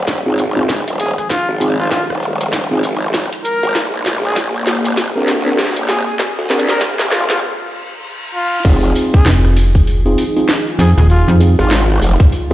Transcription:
Already playing: D#1 D#4 F4 G#4
0.07 kick, snare, closed hi-hat, shaker
0.26 G#1 C4 D#4 F4 G#4
0.38 closed hi-hat, shaker
0.56 C4 D#4 F4 G#4, shaker
0.68 kick, snare, closed hi-hat, shaker
0.88 D#1, closed hi-hat
0.99 G#4, closed hi-hat, shaker
1.18 G#4, cross-stick, closed hi-hat, shaker
1.30 F4, kick, snare, closed hi-hat, shaker
1.49 G#1
1.61 C4 D#4 F4 G#4, closed hi-hat, shaker
1.79 F4, cross-stick, shaker
1.91 F4, kick, snare, closed hi-hat, shaker
2.10 D#1, cross-stick, shaker
2.21 shaker
2.40 closed hi-hat, shaker
2.53 kick, snare, closed hi-hat, shaker
2.71 G#1 C4 D#4 F4 G#4
2.83 closed hi-hat, shaker
3.02 shaker
3.14 kick, snare, closed hi-hat, shaker
3.33 closed hi-hat
3.44 A#4, closed hi-hat, shaker
3.63 G#1, closed hi-hat, shaker
3.75 A#1 A#3 C5 D5, kick, snare, closed hi-hat, shaker
4.05 A#1, snare, closed hi-hat, shaker
4.24 G#4, shaker
4.36 kick, snare, closed hi-hat, shaker
4.55 shaker
4.67 G#1, snare, shaker
4.85 closed hi-hat, shaker
4.97 kick, snare, closed hi-hat, shaker
5.15 D2 C4 D4 G#4 A#4
5.28 snare, closed hi-hat, shaker
5.46 C4 D4 G#4 A#4, shaker
5.59 kick, snare, closed hi-hat, shaker
5.62 snare
5.65 snare
5.68 snare
5.74 G#1, snare, closed hi-hat
5.89 G#4, snare, closed hi-hat, shaker
6.08 G#4, shaker
6.19 kick, snare, closed hi-hat, shaker
6.39 D2, shaker
6.50 C4 D4 G#4 A#4, snare, shaker
6.59 closed hi-hat
6.69 A#4, snare, shaker
6.80 C#2, kick, snare, closed hi-hat, shaker
6.99 A#1, snare, shaker
7.12 F4, snare, shaker
7.30 F4, snare, closed hi-hat, shaker
7.42 reverse cymbal
8.34 F4
8.65 F1 C4 D#4 F4 G#4, kick, open hi-hat, crash, shaker
8.83 open hi-hat
8.95 open hi-hat, shaker
9.13 G#4, kick, cross-stick, open hi-hat, shaker
9.26 F1, snare, open hi-hat, shaker
9.45 cross-stick, open hi-hat
9.56 open hi-hat, shaker
9.75 kick, open hi-hat, shaker
9.87 open hi-hat, shaker
10.06 C4 D#4 F4 G#4, open hi-hat
10.18 open hi-hat, shaker
10.36 C4 D#4 F4 G#4, open hi-hat, shaker
10.48 snare, open hi-hat, shaker
10.67 open hi-hat
10.79 F2 G#4, open hi-hat, shaker
10.98 D#1 G#4, cross-stick, open hi-hat, shaker
11.10 F4, open hi-hat, shaker
11.28 F2, open hi-hat
11.40 C4 D#4 F4 G#4, open hi-hat, shaker
11.59 G#1 F4, cross-stick, open hi-hat, shaker
11.71 F4, snare, open hi-hat, shaker
11.90 cross-stick, open hi-hat
11.92 cross-stick
11.96 cross-stick
11.98 cross-stick
12.00 F1, cross-stick, open hi-hat, shaker
12.20 kick, open hi-hat, shaker
12.32 open hi-hat, shaker
12.51 F4

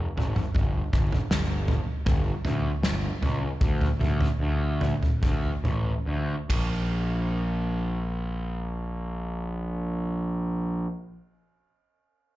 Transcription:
0.17 G#1, floor tom
0.36 mid tom
0.55 G1, kick, floor tom
0.93 G1, kick, floor tom
1.12 floor tom
1.30 G1, snare
1.68 floor tom
2.06 G1, kick, floor tom, mid tom
2.45 D2, floor tom
2.82 G1, snare
3.22 C#2, floor tom
3.61 D2, kick, floor tom
3.81 floor tom
3.99 D2, floor tom, mid tom
4.21 floor tom
4.40 D2
4.81 floor tom
5.03 floor tom
5.23 D2, kick, floor tom, mid tom
5.64 A1, floor tom
6.06 D2
6.49 A#1, kick, ride

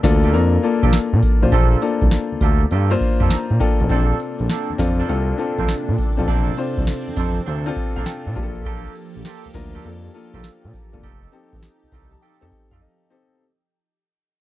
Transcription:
Already playing: A#3 D4 F4 A4 A5
0.03 D2 A#3 D4 F4 A4, kick, snare, closed hi-hat, tambourine
0.23 A#3 F4 G4 A4, closed hi-hat
0.33 F2 A#3 D4 F4 A#4, closed hi-hat, tambourine
0.63 A#3 D4 F4 A4, closed hi-hat
0.82 A#1 A#3 F4 G4 A4, kick, closed hi-hat
0.93 snare, closed hi-hat, tambourine
1.13 A#2
1.23 kick, closed hi-hat, tambourine
1.42 A1 A#3 D4 F4 C5, closed hi-hat
1.52 A#1 A#3 F4 G4 A4, kick, closed hi-hat, tambourine
1.81 A#3 D4 F4 A4, closed hi-hat, tambourine
2.01 C2, kick, closed hi-hat
2.11 snare, closed hi-hat, tambourine
2.32 D2
2.41 D2 A#3 F4 G4 A4, kick, open hi-hat, tambourine
2.61 closed hi-hat
2.71 G2 A#3 F4 G4 A4, closed hi-hat, tambourine
2.90 A#3 D4 F4 C5
3.01 kick, closed hi-hat
3.20 F2 A#3 F4 G4 A4, kick, closed hi-hat
3.30 A#5, snare, closed hi-hat, tambourine
3.50 A#2
3.59 A#3 D4 F4 A4 G5, kick, closed hi-hat, tambourine
3.80 A1, closed hi-hat
3.89 A#1 C3 A#3 C4 D4 F4 A4, kick, closed hi-hat, tambourine
4.20 closed hi-hat, tambourine
4.39 A#1, closed hi-hat
4.49 A#3 C4 D4 A4, snare, closed hi-hat, tambourine
4.70 F2
4.78 F2 C4 D4 F4 A4, kick, snare, closed hi-hat, tambourine
4.99 A#3 C4 D4 A4, closed hi-hat
5.08 C2 C4 D4 F4 A4, closed hi-hat, tambourine
5.38 C4 D4 F4 A4, closed hi-hat
5.58 A#1 A#3 C4 D4 A4, kick, closed hi-hat
5.68 snare, closed hi-hat, tambourine
5.89 A#2
5.98 kick, closed hi-hat, tambourine
6.17 A1 C4 D4 F4 A4, closed hi-hat
6.27 A#1 A#3 C4 D4 A4, kick, closed hi-hat, tambourine
6.57 C4 D4 F4 C5, closed hi-hat, tambourine
6.77 C2, kick, closed hi-hat
6.87 snare, closed hi-hat, tambourine
7.08 F2
7.16 F2 A#3 C4 D4 A4, kick, closed hi-hat, tambourine
7.37 closed hi-hat
7.46 D2 A#3 C4 D4 A4, closed hi-hat, tambourine
7.66 C4 D4 F4 A4
7.76 D5, kick, closed hi-hat
7.96 A#1 A#3 C4 D4 A4 F5, closed hi-hat
8.06 G5, snare, closed hi-hat, tambourine
8.27 A#2
8.35 A#1 F3 A#3 D4 F4 G4 A5, kick, closed hi-hat, tambourine
8.43 A4
8.56 closed hi-hat
8.65 A#3 F4 G4 A4, kick, closed hi-hat, tambourine
8.95 closed hi-hat, tambourine
9.15 A#1, closed hi-hat
9.25 A#3 F4 G4 A4, snare, closed hi-hat, tambourine
9.45 D2
9.54 D2 A#3 D4 F4 A#4, kick, snare, closed hi-hat, tambourine
9.74 A#3 F4 G4 A4, closed hi-hat
9.83 F2 A#3 D4 F4 A4, closed hi-hat, tambourine
10.14 A#3 D4 F4 A4, closed hi-hat
10.33 A#1 A#3 F4 G4 A4, kick, closed hi-hat
10.44 snare, closed hi-hat, tambourine
10.64 A#2
10.73 kick, closed hi-hat, tambourine
10.93 G1 A#3 D4 F4 A4, closed hi-hat
11.03 F1 D#4 F4 G4 A4, kick, closed hi-hat, tambourine
11.32 C4 D#4 G4 A4, closed hi-hat, tambourine
11.53 A1, kick, closed hi-hat
11.63 snare, closed hi-hat, tambourine
11.83 C2
11.92 C2 D#4 F4 G4 A4 A#5, kick, open hi-hat, tambourine
12.12 A5, closed hi-hat
12.22 D#4 F4 G4 A4 G5, closed hi-hat, tambourine
12.41 F2 C4 D#4 G4 A4
12.52 G5, kick, closed hi-hat
12.71 F2 D#4 F4 G4 A4 F5, kick, closed hi-hat
12.81 D#5
13.10 C4 D#4 G4 A4 C5

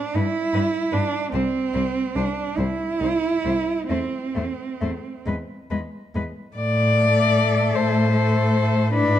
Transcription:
Already playing: D4
0.15 G2 G3 E4 B4
0.53 G2 G3 B4
0.92 G2 G3 D4 B4
1.33 C2 G3 C4 C5
1.74 C2 G3 C5
2.15 C2 G3 D4 C5
2.57 C2 G3 E4 C5
3.00 C2 G3 C5
3.44 C2 G3 C5
3.89 E2 A3 C4 C5
4.35 E2 A3 C5
4.81 E2 A3 C5
5.26 E2 G#3 B4
5.71 E2 G#3 B4
6.15 E2 G#3 B4
6.56 A2 D5
6.96 A3 A4
7.75 A2 C5
8.13 A3 A4
8.93 G#2 D4 E4 B4

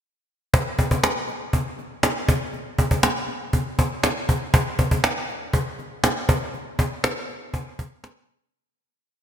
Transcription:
0.54 cajon bass
0.79 cajon bass
0.91 cajon bass
1.04 cajon slap
1.28 cajon slap
1.53 cajon bass
1.79 cajon slap
2.03 cajon slap
2.28 cajon bass
2.53 cajon slap
2.79 cajon bass
2.91 cajon bass
3.03 cajon slap
3.28 cajon slap
3.53 cajon bass
3.79 cajon bass
4.03 cajon slap
4.29 cajon bass
4.54 cajon bass
4.79 cajon bass
4.91 cajon bass
5.04 cajon slap
5.29 cajon slap
5.53 cajon bass
5.79 cajon slap
6.04 cajon slap
6.29 cajon bass
6.54 cajon slap
6.79 cajon bass
7.04 cajon slap
7.29 cajon slap
7.54 cajon bass
7.79 cajon bass
8.04 cajon slap
8.29 cajon slap

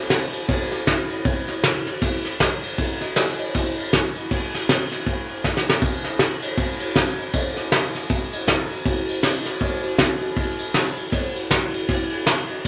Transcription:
0.10 snare, ride
0.33 ride
0.48 kick, snare, ride
0.71 snare, ride
0.87 kick, snare, ride
1.10 ride
1.25 kick, ride
1.48 snare, ride
1.64 snare, ride
1.87 snare, ride
2.02 kick, snare, ride
2.25 snare, ride
2.40 kick, snare, ride
2.63 ride
2.78 kick, ride
3.01 snare, ride
3.16 snare, ride
3.39 ride
3.54 kick, snare, ride
3.78 ride
3.93 kick, snare, ride
4.16 ride
4.31 kick, ride
4.54 snare, ride
4.69 snare, ride
4.92 snare, ride
5.06 kick, ride
5.29 ride
5.44 kick, snare
5.57 snare
5.69 snare
5.82 kick, ride
6.04 snare, ride
6.19 snare, ride
6.42 ride
6.57 kick, ride
6.80 ride
6.96 kick, snare, ride
7.18 ride
7.34 kick, ride
7.57 snare, ride
7.72 snare, ride
7.95 snare, ride
8.10 kick, ride
8.33 ride
8.48 kick, snare, ride
8.70 ride
8.86 kick, ride
9.08 ride
9.23 snare, ride
9.45 snare, ride
9.61 kick, ride
9.83 ride
9.98 kick, snare, ride
10.21 ride
10.37 kick, ride
10.59 ride
10.74 snare, ride
10.97 ride
11.12 kick, snare, ride
11.35 ride
11.51 kick, snare, ride
11.74 ride
11.89 kick, snare, ride
12.12 ride
12.27 snare, ride
12.50 ride

